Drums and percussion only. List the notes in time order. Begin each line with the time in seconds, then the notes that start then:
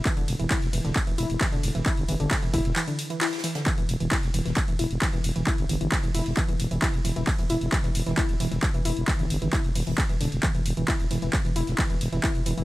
0.05 kick, clap, closed hi-hat, ride
0.17 closed hi-hat
0.28 closed hi-hat, open hi-hat
0.40 closed hi-hat
0.50 kick, snare, clap, closed hi-hat, ride
0.62 snare, closed hi-hat
0.73 closed hi-hat, open hi-hat
0.84 snare, closed hi-hat
0.95 kick, clap, closed hi-hat, ride
1.07 closed hi-hat
1.18 closed hi-hat, open hi-hat
1.30 closed hi-hat
1.40 kick, snare, clap, closed hi-hat, ride
1.52 closed hi-hat
1.63 closed hi-hat, open hi-hat
1.75 closed hi-hat
1.86 kick, clap, closed hi-hat, ride
1.97 closed hi-hat
2.08 closed hi-hat, open hi-hat
2.20 closed hi-hat
2.31 kick, snare, clap, closed hi-hat, ride
2.43 closed hi-hat
2.54 kick, open hi-hat
2.65 closed hi-hat
2.76 clap, closed hi-hat, ride
2.88 closed hi-hat
2.99 closed hi-hat, open hi-hat
3.10 closed hi-hat
3.21 snare, clap, closed hi-hat, ride
3.27 snare, closed hi-hat
3.32 snare, closed hi-hat
3.38 snare, closed hi-hat
3.43 snare, closed hi-hat, open hi-hat
3.55 snare, closed hi-hat
3.66 kick, clap, closed hi-hat, ride
3.78 closed hi-hat
3.89 closed hi-hat, open hi-hat
4.00 closed hi-hat
4.11 kick, snare, clap, closed hi-hat, ride
4.23 snare, closed hi-hat
4.34 closed hi-hat, open hi-hat
4.46 snare, closed hi-hat
4.56 kick, clap, closed hi-hat, ride
4.68 closed hi-hat
4.79 closed hi-hat, open hi-hat
4.91 closed hi-hat
5.02 kick, snare, clap, closed hi-hat, ride
5.13 closed hi-hat
5.24 closed hi-hat, open hi-hat
5.36 closed hi-hat
5.47 kick, clap, closed hi-hat, ride
5.58 closed hi-hat
5.69 closed hi-hat, open hi-hat
5.81 closed hi-hat
5.92 kick, snare, clap, closed hi-hat, ride
6.03 closed hi-hat
6.15 open hi-hat
6.26 closed hi-hat
6.37 kick, clap, closed hi-hat, ride
6.49 closed hi-hat
6.60 closed hi-hat, open hi-hat
6.71 closed hi-hat
6.82 kick, snare, clap, closed hi-hat, ride
6.94 closed hi-hat
7.04 closed hi-hat, open hi-hat
7.16 closed hi-hat
7.27 kick, clap, closed hi-hat, ride
7.38 closed hi-hat
7.49 closed hi-hat, open hi-hat
7.61 closed hi-hat
7.72 kick, snare, clap, closed hi-hat, ride
7.84 snare, closed hi-hat
7.95 closed hi-hat, open hi-hat
8.06 snare, closed hi-hat
8.17 kick, clap, closed hi-hat, ride
8.29 closed hi-hat
8.40 closed hi-hat, open hi-hat
8.52 closed hi-hat
8.62 kick, snare, clap, closed hi-hat, ride
8.74 closed hi-hat
8.85 closed hi-hat, open hi-hat
8.97 closed hi-hat
9.08 kick, clap, closed hi-hat, ride
9.19 closed hi-hat
9.30 closed hi-hat, open hi-hat
9.42 closed hi-hat
9.53 kick, snare, clap, closed hi-hat, ride
9.64 closed hi-hat
9.75 open hi-hat
9.87 closed hi-hat
9.98 kick, clap, closed hi-hat, ride
10.09 closed hi-hat
10.21 closed hi-hat, open hi-hat
10.32 closed hi-hat
10.43 kick, clap, closed hi-hat, ride
10.55 closed hi-hat
10.66 closed hi-hat, open hi-hat
10.77 closed hi-hat
10.88 kick, clap, closed hi-hat, ride
11.00 closed hi-hat
11.11 closed hi-hat, open hi-hat
11.22 closed hi-hat
11.33 kick, snare, clap, closed hi-hat, ride
11.44 snare, closed hi-hat
11.56 closed hi-hat, open hi-hat
11.67 snare, closed hi-hat
11.78 kick, clap, closed hi-hat, ride
11.90 closed hi-hat
12.01 closed hi-hat, open hi-hat
12.13 closed hi-hat
12.24 kick, snare, clap, closed hi-hat, ride
12.35 closed hi-hat
12.45 closed hi-hat, open hi-hat
12.58 closed hi-hat